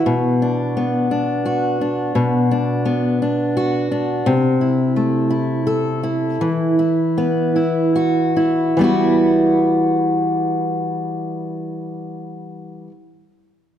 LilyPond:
\new Staff \with { instrumentName = "Steel-string acoustic guitar" } { \time 6/8 \key e \minor \tempo 4. = 54 b,8 d'8 b8 d'8 fis'8 d'8 | b,8 d'8 b8 d'8 fis'8 d'8 | c8 e'8 a8 e'8 a'8 e'8 | e8 e'8 b8 e'8 fis'8 e'8 |
<e g b e' fis'>2.~ | <e g b e' fis'>2. | }